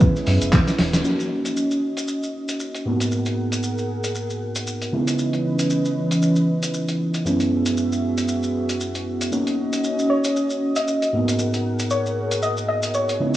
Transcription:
Already playing: analog synth pad G#3 B3 E4, fm electric piano B3 C#4 E4 B4, synth pluck B4
0.01 kick, closed hi-hat, maracas
0.16 snare, maracas
0.26 sub bass F#2, snare, closed hi-hat, open hi-hat
0.41 sub bass F#1, closed hi-hat, maracas
0.52 kick, snare, clap, closed hi-hat, maracas
0.67 snare, closed hi-hat, maracas
0.79 sub bass E1, snare, closed hi-hat, open hi-hat
0.93 snare, closed hi-hat, maracas
1.04 fm electric piano A#3 C#4 D#4 F#4, analog synth pad C#4 F#4 D#5, maracas
1.19 closed hi-hat, maracas
1.45 closed hi-hat, maracas
1.57 maracas
1.71 maracas
1.97 closed hi-hat, maracas
2.08 maracas
2.23 maracas
2.48 closed hi-hat, maracas
2.60 maracas
2.74 closed hi-hat, maracas
2.85 fm electric piano G#2 A#3 B3 D#4 F#4, analog synth pad G#4 A#4 F#5
3.00 closed hi-hat, maracas
3.11 maracas
3.26 closed hi-hat, maracas
3.52 closed hi-hat, maracas
3.63 maracas
3.78 maracas
4.04 closed hi-hat, maracas
4.15 maracas
4.30 maracas
4.55 closed hi-hat, maracas
4.67 maracas
4.82 closed hi-hat, maracas
4.92 fm electric piano C#3 G#3 B3 D#4 E4, analog synth pad E3 C#4 B4 D#5
5.07 closed hi-hat, maracas
5.19 maracas
5.33 closed hi-hat, maracas
5.59 closed hi-hat, maracas
5.70 maracas
5.85 maracas
6.11 closed hi-hat, maracas
6.22 maracas
6.36 maracas
6.63 closed hi-hat, maracas
6.74 maracas
6.88 closed hi-hat, maracas
7.14 closed hi-hat, maracas
7.25 fm electric piano F#2 G#3 B3 C#4 E4, analog synth pad B3 F#4 G#4 E5, maracas
7.40 closed hi-hat, maracas
7.66 closed hi-hat, maracas
7.77 maracas
7.92 maracas
8.18 closed hi-hat, maracas
8.28 maracas
8.43 maracas
8.69 closed hi-hat, maracas
8.80 maracas
8.95 closed hi-hat, maracas
9.21 closed hi-hat, maracas
9.32 fm electric piano A#3 C#4 D#4 F#4, analog synth pad C#4 D#5, maracas
9.47 closed hi-hat, maracas
9.73 closed hi-hat, maracas
9.84 maracas
9.99 maracas
10.10 synth pluck C#5
10.24 closed hi-hat, maracas
10.36 maracas
10.50 maracas
10.76 synth pluck D#5, closed hi-hat, maracas
10.88 maracas
11.02 closed hi-hat, maracas
11.13 fm electric piano G#2 A#3 B3 D#4 F#4, analog synth pad G#4 A#4 F#5
11.28 closed hi-hat, maracas
11.39 maracas
11.54 closed hi-hat, maracas
11.79 closed hi-hat, maracas
11.90 synth pluck C#5, maracas
12.06 maracas
12.31 closed hi-hat, maracas
12.42 synth pluck D#5, maracas
12.57 maracas
12.68 synth pluck D#5
12.82 closed hi-hat, maracas
12.94 synth pluck C#5, maracas
13.09 closed hi-hat, maracas
13.20 fm electric piano C#3 G#3 B3 D#4 E4, analog synth pad E3 C#4 B4 D#5

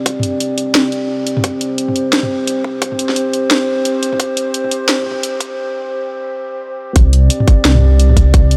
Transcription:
Already playing: analog synth pad C4 G4 D5
0.06 kick, closed hi-hat
0.20 closed hi-hat, mid tom
0.40 closed hi-hat
0.58 closed hi-hat
0.75 snare, closed hi-hat
0.92 closed hi-hat
1.27 closed hi-hat
1.37 mid tom
1.44 analog synth pad C5, kick, closed hi-hat
1.61 closed hi-hat
1.78 closed hi-hat
1.88 mid tom
1.96 closed hi-hat
2.13 snare, closed hi-hat
2.23 mid tom
2.47 closed hi-hat
2.64 kick
2.82 kick, closed hi-hat
2.92 mid tom
2.99 closed hi-hat
3.09 snare
3.16 closed hi-hat
3.33 closed hi-hat
3.51 snare, closed hi-hat
3.85 closed hi-hat
4.03 closed hi-hat
4.13 mid tom
4.20 kick, closed hi-hat
4.37 closed hi-hat
4.54 closed hi-hat
4.64 mid tom
4.71 closed hi-hat
4.89 snare, closed hi-hat
4.99 mid tom
5.03 mid tom
5.06 mid tom
5.11 mid tom
5.23 closed hi-hat
5.40 kick, closed hi-hat
6.96 detuned saw bass C2, analog synth pad C4 G4 D5, kick, closed hi-hat
7.13 closed hi-hat
7.30 closed hi-hat
7.40 mid tom
7.48 kick, closed hi-hat
7.65 detuned saw bass C2, snare, closed hi-hat
7.75 mid tom
7.82 detuned saw bass C2
8.00 closed hi-hat
8.09 mid tom
8.17 kick, closed hi-hat
8.34 detuned saw bass C2, kick, closed hi-hat
8.51 closed hi-hat

